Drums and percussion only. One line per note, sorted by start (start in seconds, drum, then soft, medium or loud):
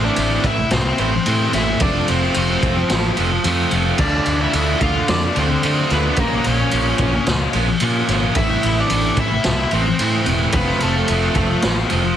0.16 ride medium
0.44 kick medium
0.44 ride medium
0.71 snare loud
0.71 ride medium
0.98 ride medium
1.26 ride medium
1.53 snare soft
1.53 ride medium
1.80 kick loud
1.80 ride loud
2.08 ride medium
2.34 ride loud
2.62 kick medium
2.62 ride medium
2.89 snare loud
2.89 ride loud
3.17 ride medium
3.44 ride loud
3.71 ride medium
3.98 kick loud
3.98 crash medium
4.26 ride medium
4.53 ride loud
4.81 kick medium
4.81 ride medium
5.08 snare loud
5.08 ride medium
5.36 ride medium
5.63 ride medium
5.90 snare soft
5.90 ride medium
6.16 kick loud
6.16 ride medium
6.44 ride medium
6.71 ride medium
6.98 kick medium
6.98 ride medium
7.26 snare loud
7.26 ride medium
7.53 ride medium
7.80 ride loud
8.08 snare soft
8.08 ride medium
8.35 kick loud
8.35 ride loud
8.63 ride medium
8.90 ride loud
9.17 kick medium
9.17 ride medium
9.44 snare loud
9.44 ride medium
9.71 ride medium
9.99 ride loud
10.26 ride medium
10.52 kick loud
10.52 ride loud
10.80 ride medium
11.08 ride loud
11.35 kick medium
11.35 ride medium
11.62 snare loud
11.62 ride medium
11.90 ride medium